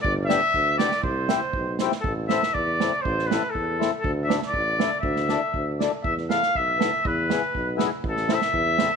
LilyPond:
<<
  \new Staff \with { instrumentName = "Trumpet" } { \time 2/4 \key c \major \tempo 4 = 121 d''8 e''4 d''8 | c''4. r8 | \key a \minor a'8 e''8 d''4 | c''8 b'8 a'8. r16 |
a'8 e''8 d''4 | e''4. r8 | e''8 f''8 e''4 | b'4. r8 |
a'8 e''4. | }
  \new Staff \with { instrumentName = "Accordion" } { \time 2/4 \key c \major r8 <b d' g'>8 r8 <b d' g'>8 | r8 <c' e' g'>8 r8 <c' e' g'>8 | \key a \minor r8 <c' e' a'>8 r8 <c' e' a'>8 | r8 <c' e' a'>8 r8 <c' e' a'>8 |
r8 <d' e' a'>8 r8 <d' e' a'>8 | r8 <d' e' a'>8 r8 <d' e' a'>8 | r8 <b e' a'>8 r8 <b e' a'>8 | r8 <b e' gis'>8 r8 <b e' gis'>8 |
r8 <c' e' a'>8 r8 <c' e' a'>8 | }
  \new Staff \with { instrumentName = "Tuba" } { \clef bass \time 2/4 \key c \major g,,4 d,4 | c,4 b,,4 | \key a \minor a,,4 e,4 | a,,4 e,4 |
d,4 a,,4 | d,4 d,4 | e,4 b,,4 | e,4 b,,4 |
a,,4 e,4 | }
  \new DrumStaff \with { instrumentName = "Drums" } \drummode { \time 2/4 bd8 <hhp sn>8 bd8 <hhp sn>16 sn16 | bd8 <hhp sn>8 bd8 <hhp sn>16 sn16 | bd8 sn16 sn16 bd8 sn8 | bd16 sn16 sn8 bd8 sn8 |
bd8 sn16 sn16 bd8 sn8 | bd16 sn16 sn8 bd8 sn8 | bd16 sn16 sn16 sn16 bd8 sn8 | bd8 sn8 bd8 sn8 |
bd16 sn16 sn16 sn16 bd8 sn8 | }
>>